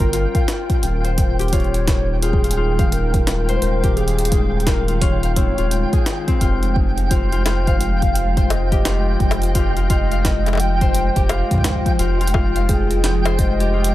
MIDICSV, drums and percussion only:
0, 0, Header, 1, 2, 480
1, 0, Start_track
1, 0, Key_signature, -4, "minor"
1, 0, Tempo, 697674
1, 570, Time_signature, 4, 2, 24, 8
1, 9596, End_track
2, 0, Start_track
2, 0, Title_t, "Drums"
2, 0, Note_on_c, 9, 36, 107
2, 0, Note_on_c, 9, 42, 41
2, 68, Note_off_c, 9, 36, 0
2, 68, Note_off_c, 9, 42, 0
2, 90, Note_on_c, 9, 42, 71
2, 159, Note_off_c, 9, 42, 0
2, 239, Note_on_c, 9, 36, 119
2, 239, Note_on_c, 9, 42, 39
2, 308, Note_off_c, 9, 36, 0
2, 308, Note_off_c, 9, 42, 0
2, 331, Note_on_c, 9, 38, 126
2, 331, Note_on_c, 9, 42, 96
2, 399, Note_off_c, 9, 38, 0
2, 399, Note_off_c, 9, 42, 0
2, 479, Note_on_c, 9, 36, 108
2, 479, Note_on_c, 9, 42, 39
2, 548, Note_off_c, 9, 36, 0
2, 548, Note_off_c, 9, 42, 0
2, 570, Note_on_c, 9, 42, 62
2, 639, Note_off_c, 9, 42, 0
2, 719, Note_on_c, 9, 42, 39
2, 788, Note_off_c, 9, 42, 0
2, 810, Note_on_c, 9, 36, 122
2, 810, Note_on_c, 9, 42, 94
2, 879, Note_off_c, 9, 36, 0
2, 879, Note_off_c, 9, 42, 0
2, 959, Note_on_c, 9, 42, 36
2, 970, Note_off_c, 9, 42, 0
2, 970, Note_on_c, 9, 42, 31
2, 1020, Note_off_c, 9, 42, 0
2, 1020, Note_on_c, 9, 42, 26
2, 1050, Note_on_c, 9, 36, 109
2, 1051, Note_off_c, 9, 42, 0
2, 1051, Note_on_c, 9, 42, 69
2, 1119, Note_off_c, 9, 36, 0
2, 1119, Note_off_c, 9, 42, 0
2, 1131, Note_on_c, 9, 42, 14
2, 1199, Note_off_c, 9, 42, 0
2, 1199, Note_on_c, 9, 42, 40
2, 1268, Note_off_c, 9, 42, 0
2, 1290, Note_on_c, 9, 36, 127
2, 1290, Note_on_c, 9, 38, 122
2, 1290, Note_on_c, 9, 42, 92
2, 1359, Note_off_c, 9, 36, 0
2, 1359, Note_off_c, 9, 38, 0
2, 1359, Note_off_c, 9, 42, 0
2, 1531, Note_on_c, 9, 42, 67
2, 1599, Note_off_c, 9, 42, 0
2, 1605, Note_on_c, 9, 36, 109
2, 1673, Note_off_c, 9, 36, 0
2, 1679, Note_on_c, 9, 42, 39
2, 1725, Note_off_c, 9, 42, 0
2, 1725, Note_on_c, 9, 42, 96
2, 1794, Note_off_c, 9, 42, 0
2, 1919, Note_on_c, 9, 36, 127
2, 1919, Note_on_c, 9, 42, 39
2, 1988, Note_off_c, 9, 36, 0
2, 1988, Note_off_c, 9, 42, 0
2, 2011, Note_on_c, 9, 42, 69
2, 2079, Note_off_c, 9, 42, 0
2, 2159, Note_on_c, 9, 36, 108
2, 2159, Note_on_c, 9, 42, 40
2, 2228, Note_off_c, 9, 36, 0
2, 2228, Note_off_c, 9, 42, 0
2, 2250, Note_on_c, 9, 38, 122
2, 2250, Note_on_c, 9, 42, 95
2, 2319, Note_off_c, 9, 38, 0
2, 2319, Note_off_c, 9, 42, 0
2, 2399, Note_on_c, 9, 42, 37
2, 2468, Note_off_c, 9, 42, 0
2, 2490, Note_on_c, 9, 42, 60
2, 2559, Note_off_c, 9, 42, 0
2, 2639, Note_on_c, 9, 36, 105
2, 2639, Note_on_c, 9, 42, 39
2, 2708, Note_off_c, 9, 36, 0
2, 2708, Note_off_c, 9, 42, 0
2, 2730, Note_on_c, 9, 42, 40
2, 2799, Note_off_c, 9, 42, 0
2, 2805, Note_on_c, 9, 42, 51
2, 2874, Note_off_c, 9, 42, 0
2, 2879, Note_on_c, 9, 42, 61
2, 2925, Note_off_c, 9, 42, 0
2, 2925, Note_on_c, 9, 42, 74
2, 2970, Note_on_c, 9, 36, 120
2, 2971, Note_off_c, 9, 42, 0
2, 2971, Note_on_c, 9, 42, 65
2, 3039, Note_off_c, 9, 36, 0
2, 3039, Note_off_c, 9, 42, 0
2, 3165, Note_on_c, 9, 42, 39
2, 3210, Note_on_c, 9, 36, 110
2, 3211, Note_off_c, 9, 42, 0
2, 3211, Note_on_c, 9, 38, 126
2, 3211, Note_on_c, 9, 42, 89
2, 3279, Note_off_c, 9, 36, 0
2, 3279, Note_off_c, 9, 38, 0
2, 3279, Note_off_c, 9, 42, 0
2, 3359, Note_on_c, 9, 42, 39
2, 3428, Note_off_c, 9, 42, 0
2, 3450, Note_on_c, 9, 36, 119
2, 3451, Note_on_c, 9, 42, 62
2, 3519, Note_off_c, 9, 36, 0
2, 3519, Note_off_c, 9, 42, 0
2, 3599, Note_on_c, 9, 42, 38
2, 3668, Note_off_c, 9, 42, 0
2, 3690, Note_on_c, 9, 36, 110
2, 3691, Note_on_c, 9, 42, 88
2, 3759, Note_off_c, 9, 36, 0
2, 3759, Note_off_c, 9, 42, 0
2, 3840, Note_on_c, 9, 42, 37
2, 3908, Note_off_c, 9, 42, 0
2, 3930, Note_on_c, 9, 42, 65
2, 3999, Note_off_c, 9, 42, 0
2, 4079, Note_on_c, 9, 36, 125
2, 4079, Note_on_c, 9, 42, 37
2, 4148, Note_off_c, 9, 36, 0
2, 4148, Note_off_c, 9, 42, 0
2, 4171, Note_on_c, 9, 38, 125
2, 4171, Note_on_c, 9, 42, 90
2, 4239, Note_off_c, 9, 38, 0
2, 4239, Note_off_c, 9, 42, 0
2, 4319, Note_on_c, 9, 36, 105
2, 4320, Note_on_c, 9, 42, 37
2, 4388, Note_off_c, 9, 36, 0
2, 4388, Note_off_c, 9, 42, 0
2, 4410, Note_on_c, 9, 36, 107
2, 4411, Note_on_c, 9, 42, 59
2, 4479, Note_off_c, 9, 36, 0
2, 4479, Note_off_c, 9, 42, 0
2, 4559, Note_on_c, 9, 42, 37
2, 4628, Note_off_c, 9, 42, 0
2, 4650, Note_on_c, 9, 36, 122
2, 4719, Note_off_c, 9, 36, 0
2, 4799, Note_on_c, 9, 42, 37
2, 4868, Note_off_c, 9, 42, 0
2, 4890, Note_on_c, 9, 36, 101
2, 4890, Note_on_c, 9, 42, 61
2, 4959, Note_off_c, 9, 36, 0
2, 4959, Note_off_c, 9, 42, 0
2, 5039, Note_on_c, 9, 42, 37
2, 5108, Note_off_c, 9, 42, 0
2, 5130, Note_on_c, 9, 38, 115
2, 5130, Note_on_c, 9, 42, 89
2, 5130, Note_on_c, 9, 60, 73
2, 5199, Note_off_c, 9, 38, 0
2, 5199, Note_off_c, 9, 42, 0
2, 5199, Note_off_c, 9, 60, 0
2, 5279, Note_on_c, 9, 36, 117
2, 5279, Note_on_c, 9, 42, 37
2, 5348, Note_off_c, 9, 36, 0
2, 5348, Note_off_c, 9, 42, 0
2, 5370, Note_on_c, 9, 42, 62
2, 5439, Note_off_c, 9, 42, 0
2, 5519, Note_on_c, 9, 36, 100
2, 5519, Note_on_c, 9, 42, 39
2, 5588, Note_off_c, 9, 36, 0
2, 5588, Note_off_c, 9, 42, 0
2, 5610, Note_on_c, 9, 42, 86
2, 5679, Note_off_c, 9, 42, 0
2, 5759, Note_on_c, 9, 36, 118
2, 5759, Note_on_c, 9, 42, 38
2, 5828, Note_off_c, 9, 36, 0
2, 5828, Note_off_c, 9, 42, 0
2, 5850, Note_on_c, 9, 42, 65
2, 5850, Note_on_c, 9, 60, 52
2, 5919, Note_off_c, 9, 42, 0
2, 5919, Note_off_c, 9, 60, 0
2, 5999, Note_on_c, 9, 36, 102
2, 5999, Note_on_c, 9, 42, 36
2, 6068, Note_off_c, 9, 36, 0
2, 6068, Note_off_c, 9, 42, 0
2, 6090, Note_on_c, 9, 38, 118
2, 6090, Note_on_c, 9, 42, 88
2, 6159, Note_off_c, 9, 38, 0
2, 6159, Note_off_c, 9, 42, 0
2, 6330, Note_on_c, 9, 36, 113
2, 6330, Note_on_c, 9, 42, 27
2, 6399, Note_off_c, 9, 36, 0
2, 6399, Note_off_c, 9, 42, 0
2, 6405, Note_on_c, 9, 60, 75
2, 6410, Note_on_c, 9, 42, 37
2, 6474, Note_off_c, 9, 60, 0
2, 6479, Note_off_c, 9, 42, 0
2, 6479, Note_on_c, 9, 42, 38
2, 6490, Note_off_c, 9, 42, 0
2, 6490, Note_on_c, 9, 42, 48
2, 6559, Note_off_c, 9, 42, 0
2, 6570, Note_on_c, 9, 36, 102
2, 6570, Note_on_c, 9, 42, 89
2, 6639, Note_off_c, 9, 36, 0
2, 6639, Note_off_c, 9, 42, 0
2, 6719, Note_on_c, 9, 42, 36
2, 6788, Note_off_c, 9, 42, 0
2, 6810, Note_on_c, 9, 36, 117
2, 6811, Note_on_c, 9, 42, 60
2, 6879, Note_off_c, 9, 36, 0
2, 6879, Note_off_c, 9, 42, 0
2, 6959, Note_on_c, 9, 42, 36
2, 7028, Note_off_c, 9, 42, 0
2, 7050, Note_on_c, 9, 36, 102
2, 7050, Note_on_c, 9, 38, 114
2, 7050, Note_on_c, 9, 42, 89
2, 7119, Note_off_c, 9, 36, 0
2, 7119, Note_off_c, 9, 38, 0
2, 7119, Note_off_c, 9, 42, 0
2, 7199, Note_on_c, 9, 42, 38
2, 7199, Note_on_c, 9, 60, 23
2, 7210, Note_off_c, 9, 60, 0
2, 7210, Note_on_c, 9, 60, 32
2, 7214, Note_off_c, 9, 60, 0
2, 7214, Note_on_c, 9, 60, 28
2, 7245, Note_off_c, 9, 60, 0
2, 7245, Note_on_c, 9, 60, 38
2, 7260, Note_off_c, 9, 60, 0
2, 7260, Note_on_c, 9, 60, 41
2, 7268, Note_off_c, 9, 42, 0
2, 7275, Note_off_c, 9, 60, 0
2, 7275, Note_on_c, 9, 60, 44
2, 7290, Note_on_c, 9, 42, 60
2, 7344, Note_off_c, 9, 60, 0
2, 7359, Note_off_c, 9, 42, 0
2, 7439, Note_on_c, 9, 36, 115
2, 7439, Note_on_c, 9, 42, 38
2, 7508, Note_off_c, 9, 36, 0
2, 7508, Note_off_c, 9, 42, 0
2, 7530, Note_on_c, 9, 42, 88
2, 7599, Note_off_c, 9, 42, 0
2, 7679, Note_on_c, 9, 36, 106
2, 7679, Note_on_c, 9, 42, 37
2, 7748, Note_off_c, 9, 36, 0
2, 7748, Note_off_c, 9, 42, 0
2, 7770, Note_on_c, 9, 42, 66
2, 7770, Note_on_c, 9, 60, 78
2, 7839, Note_off_c, 9, 42, 0
2, 7839, Note_off_c, 9, 60, 0
2, 7919, Note_on_c, 9, 36, 109
2, 7919, Note_on_c, 9, 42, 38
2, 7942, Note_off_c, 9, 36, 0
2, 7942, Note_on_c, 9, 36, 88
2, 7965, Note_off_c, 9, 36, 0
2, 7965, Note_on_c, 9, 36, 74
2, 7988, Note_off_c, 9, 36, 0
2, 7988, Note_off_c, 9, 42, 0
2, 7988, Note_on_c, 9, 36, 60
2, 8010, Note_off_c, 9, 36, 0
2, 8010, Note_on_c, 9, 36, 50
2, 8010, Note_on_c, 9, 38, 116
2, 8010, Note_on_c, 9, 42, 86
2, 8047, Note_off_c, 9, 36, 0
2, 8047, Note_on_c, 9, 36, 41
2, 8079, Note_off_c, 9, 38, 0
2, 8079, Note_off_c, 9, 42, 0
2, 8085, Note_off_c, 9, 36, 0
2, 8085, Note_on_c, 9, 36, 34
2, 8122, Note_off_c, 9, 36, 0
2, 8122, Note_on_c, 9, 36, 28
2, 8159, Note_off_c, 9, 36, 0
2, 8159, Note_on_c, 9, 36, 103
2, 8159, Note_on_c, 9, 42, 35
2, 8228, Note_off_c, 9, 36, 0
2, 8228, Note_off_c, 9, 42, 0
2, 8250, Note_on_c, 9, 42, 63
2, 8319, Note_off_c, 9, 42, 0
2, 8399, Note_on_c, 9, 42, 38
2, 8445, Note_off_c, 9, 42, 0
2, 8445, Note_on_c, 9, 42, 87
2, 8490, Note_on_c, 9, 36, 114
2, 8490, Note_on_c, 9, 60, 54
2, 8514, Note_off_c, 9, 42, 0
2, 8559, Note_off_c, 9, 36, 0
2, 8559, Note_off_c, 9, 60, 0
2, 8639, Note_on_c, 9, 42, 37
2, 8708, Note_off_c, 9, 42, 0
2, 8730, Note_on_c, 9, 36, 100
2, 8730, Note_on_c, 9, 42, 64
2, 8799, Note_off_c, 9, 36, 0
2, 8799, Note_off_c, 9, 42, 0
2, 8879, Note_on_c, 9, 42, 39
2, 8948, Note_off_c, 9, 42, 0
2, 8970, Note_on_c, 9, 38, 112
2, 8970, Note_on_c, 9, 42, 91
2, 9039, Note_off_c, 9, 38, 0
2, 9039, Note_off_c, 9, 42, 0
2, 9120, Note_on_c, 9, 42, 39
2, 9120, Note_on_c, 9, 60, 82
2, 9188, Note_off_c, 9, 42, 0
2, 9188, Note_off_c, 9, 60, 0
2, 9210, Note_on_c, 9, 36, 98
2, 9210, Note_on_c, 9, 42, 64
2, 9279, Note_off_c, 9, 36, 0
2, 9279, Note_off_c, 9, 42, 0
2, 9359, Note_on_c, 9, 42, 37
2, 9428, Note_off_c, 9, 42, 0
2, 9525, Note_on_c, 9, 42, 90
2, 9594, Note_off_c, 9, 42, 0
2, 9596, End_track
0, 0, End_of_file